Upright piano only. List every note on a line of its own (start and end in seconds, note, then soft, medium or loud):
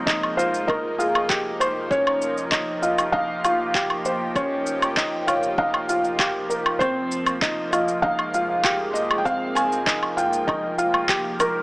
0.07 0.33 D#4 medium
0.38 0.64 F4 medium
0.68 0.94 D#4 medium
0.99 1.25 F4 medium
1.29 1.82 G4 medium
1.91 2.43 C#4 medium
2.52 2.78 D#4 medium
2.83 3.09 F4 medium
3.13 3.39 D#4 loud
3.45 3.70 F4 medium
3.75 4.27 G4 medium
4.36 4.88 C#4 loud
4.97 5.23 D#4 medium
5.27 5.53 F4 medium
5.59 5.84 D#4 medium
5.89 6.15 F4 medium
6.20 6.72 G4 medium
6.81 7.33 C4 loud
7.42 7.68 D#4 medium
7.73 7.99 F4 medium
8.04 8.30 D#4 medium
8.34 8.60 F4 medium
8.65 9.17 G4 medium
9.26 9.78 C4 loud
9.87 10.13 D#4 medium
10.17 10.43 F4 medium
10.47 10.74 D#4 medium
10.78 11.05 F4 medium
11.09 11.61 G4 medium